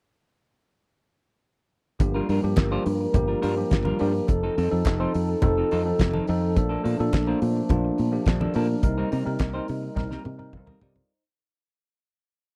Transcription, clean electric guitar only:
2.00 muted clean electric guitar stroke soft
2.14 2.27 G3 medium
2.14 2.29 D4 medium
2.14 2.29 F4 medium
2.14 2.29 A#4 medium
2.29 2.41 G3 medium
2.29 2.41 D4 medium
2.29 2.41 F4 medium
2.29 2.41 A#4 medium
2.57 muted clean electric guitar stroke soft
2.72 2.85 G3 medium
2.72 2.85 D4 medium
2.72 2.86 F4 medium
2.72 2.86 C5 medium
2.86 muted clean electric guitar stroke soft
3.01 muted clean electric guitar stroke soft
3.14 muted clean electric guitar stroke soft
3.28 3.40 G3 soft
3.28 3.41 D4 medium
3.28 3.40 F4 medium
3.28 3.40 A#4 medium
3.41 3.57 G3 medium
3.41 3.57 D4 medium
3.41 3.56 F4 medium
3.41 3.56 A#4 loud
3.57 muted clean electric guitar stroke soft
3.70 muted clean electric guitar stroke soft
3.85 3.99 G3 medium
3.85 3.99 D4 medium
3.85 4.00 F4 medium
3.85 3.99 A#4 medium
4.00 4.12 G3 medium
4.00 4.12 D4 medium
4.00 4.12 F4 medium
4.00 4.12 A#4 medium
4.14 muted clean electric guitar stroke soft
4.29 muted clean electric guitar stroke soft
4.43 4.56 F3 medium
4.43 4.56 C4 medium
4.43 4.57 D#4 medium
4.43 4.57 A4 medium
4.57 4.69 F3 medium
4.57 4.69 C4 medium
4.57 4.69 D#4 medium
4.57 4.69 A4 medium
4.71 muted clean electric guitar stroke soft
4.85 muted clean electric guitar stroke soft
5.00 5.13 F3 medium
5.00 5.14 C4 medium
5.00 5.14 D#4 medium
5.00 5.15 C5 medium
5.29 muted clean electric guitar stroke soft
5.43 muted clean electric guitar stroke soft
5.57 5.70 F3 medium
5.57 5.69 C4 medium
5.57 5.69 D#4 medium
5.57 5.69 A4 medium
5.71 5.86 F3 medium
5.71 5.85 C4 medium
5.71 5.84 D#4 medium
5.71 5.84 A4 medium
5.85 muted clean electric guitar stroke soft
6.14 6.27 F3 medium
6.14 6.27 C4 medium
6.14 6.27 D#4 medium
6.14 6.28 A4 medium
6.41 muted clean electric guitar stroke soft
6.56 muted clean electric guitar stroke soft
6.69 6.82 F3 medium
6.69 6.83 A#3 medium
6.69 6.83 D4 medium
6.69 6.84 A4 medium
6.83 6.96 F3 medium
6.83 6.96 A#3 medium
6.83 6.96 D4 medium
6.83 6.96 A4 medium
7.00 muted clean electric guitar stroke soft
7.13 muted clean electric guitar stroke soft
7.27 7.41 F3 medium
7.27 7.41 A#3 medium
7.27 7.41 D4 medium
7.27 7.42 A#4 medium
7.42 muted clean electric guitar stroke soft
7.56 muted clean electric guitar stroke soft
7.70 muted clean electric guitar stroke soft
7.85 muted clean electric guitar stroke soft
8.13 muted clean electric guitar stroke soft
8.27 muted clean electric guitar stroke soft
8.41 8.54 F3 medium
8.41 8.54 A#3 medium
8.41 8.55 D4 medium
8.41 8.55 A4 medium
8.55 8.67 F3 medium
8.55 8.67 A#3 medium
8.55 8.67 D4 medium
8.55 8.67 A4 medium
8.69 muted clean electric guitar stroke soft
8.83 muted clean electric guitar stroke soft
8.98 9.10 G3 medium
8.98 9.11 C4 medium
8.98 9.11 D#4 medium
8.98 9.12 A#4 medium
9.11 9.23 G3 medium
9.11 9.24 C4 medium
9.11 9.24 D#4 medium
9.11 9.24 A#4 medium
9.40 muted clean electric guitar stroke soft
9.54 9.67 G3 medium
9.54 9.68 C4 medium
9.54 9.68 D#4 medium
9.54 9.69 C5 medium
9.70 muted clean electric guitar stroke soft
9.83 muted clean electric guitar stroke soft
9.96 muted clean electric guitar stroke soft
10.11 10.24 G3 medium
10.11 10.24 C4 medium
10.11 10.24 D#4 medium
10.11 10.24 A#4 medium
10.25 muted clean electric guitar stroke soft
10.39 muted clean electric guitar stroke soft
10.53 muted clean electric guitar stroke soft
10.67 10.80 G3 medium
10.67 10.80 C4 medium
10.67 10.81 D#4 medium
10.67 10.81 A#4 medium
10.81 10.93 G3 medium
10.81 10.94 C4 medium
10.81 10.94 D#4 medium
10.81 10.94 A#4 medium
10.96 muted clean electric guitar stroke soft

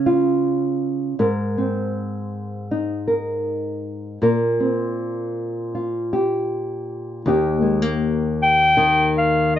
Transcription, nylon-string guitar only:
0.00 1.13 C#3 medium
0.00 1.19 A#3 soft
0.00 1.14 C#4 medium
0.06 1.19 F4 soft
1.19 4.17 G#2 medium
1.19 3.07 A#4 medium
1.58 4.18 C4 soft
2.71 4.18 D#4 medium
3.08 4.22 A#4 soft
4.22 7.25 A#2 medium
4.22 6.12 A#4 medium
4.60 7.21 C4 soft
5.75 7.21 F4 soft
6.13 7.21 G4 soft
7.26 9.59 D#2 medium
7.26 7.62 A#3 medium
7.26 9.59 D#4 medium
7.26 9.59 G4 medium
7.62 7.82 G#3 soft
7.82 9.59 A#3 soft
8.77 9.59 D#3 medium

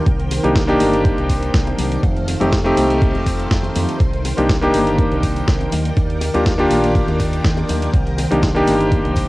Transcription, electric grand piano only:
0.44 0.61 A#3 medium
0.44 0.61 D4 medium
0.44 0.61 D#4 medium
0.44 0.62 G4 medium
0.67 2.01 A#3 loud
0.67 2.02 D4 loud
0.67 2.02 D#4 loud
0.67 2.02 G4 loud
2.40 2.58 A3 medium
2.40 2.58 C4 medium
2.40 2.58 D#4 medium
2.40 2.58 G4 medium
2.64 3.98 A3 loud
2.64 3.98 C4 medium
2.64 3.99 D#4 medium
2.64 3.99 G4 loud
4.37 4.55 A#3 medium
4.37 4.55 D4 medium
4.37 4.55 D#4 medium
4.37 4.55 G4 medium
4.61 5.70 A#3 loud
4.61 5.71 D4 medium
4.61 5.71 D#4 medium
4.61 5.71 G4 loud
6.34 6.51 A#3 medium
6.34 6.52 D4 medium
6.34 6.52 F4 medium
6.34 6.52 G4 medium
6.58 7.92 A#3 loud
6.58 7.92 D4 medium
6.58 7.92 F4 medium
6.58 7.93 G4 loud
8.31 8.48 A#3 medium
8.31 8.48 D4 medium
8.31 8.48 D#4 medium
8.31 8.48 G4 medium
8.54 9.28 A#3 loud
8.54 9.28 D4 medium
8.54 9.28 D#4 medium
8.54 9.28 G4 loud

